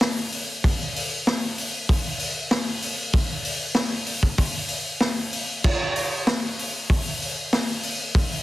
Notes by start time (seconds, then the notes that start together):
0.01 snare, open hi-hat
0.32 open hi-hat
0.64 kick, open hi-hat
0.96 open hi-hat
1.27 snare, open hi-hat
1.58 open hi-hat
1.89 kick, open hi-hat
2.19 open hi-hat
2.51 snare, open hi-hat
2.82 open hi-hat
3.13 kick, open hi-hat
3.45 open hi-hat
3.75 snare, open hi-hat
4.06 open hi-hat
4.23 kick
4.38 kick, open hi-hat
4.68 open hi-hat
5.00 snare, open hi-hat
5.33 open hi-hat
5.64 kick, crash
5.96 open hi-hat
6.27 snare, open hi-hat
6.59 open hi-hat
6.90 kick, open hi-hat
7.22 open hi-hat
7.53 snare, open hi-hat
7.83 open hi-hat
8.15 kick, open hi-hat